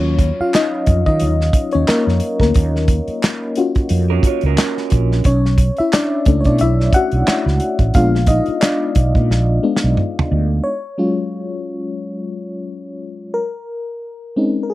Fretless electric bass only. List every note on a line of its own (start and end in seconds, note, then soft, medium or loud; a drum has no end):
0.00 0.30 D#2 medium
0.40 muted fretless electric bass stroke soft
0.88 1.03 F2 medium
1.07 1.23 D#3 medium
1.21 1.49 D#2 medium
1.75 1.86 D#2 medium
2.07 2.19 F2 medium
2.40 2.53 D2 medium
2.56 2.99 D#2 loud
3.08 muted fretless electric bass stroke soft
3.90 4.18 F2 medium
4.43 4.55 C#2 medium
4.92 5.20 A#1 medium
5.26 5.69 B1 loud
5.79 muted fretless electric bass stroke soft
6.26 6.42 C#2 medium
6.46 6.58 B2 medium
6.61 6.88 B1 medium
7.12 7.25 B1 medium
7.46 7.58 C#2 medium
7.79 7.92 A1 medium
7.95 8.38 A#1 loud
8.48 muted fretless electric bass stroke soft
8.96 9.12 B1 medium
9.15 9.27 A#2 medium
9.30 9.58 A#1 medium
9.84 9.95 B1 medium
10.31 10.59 D2 medium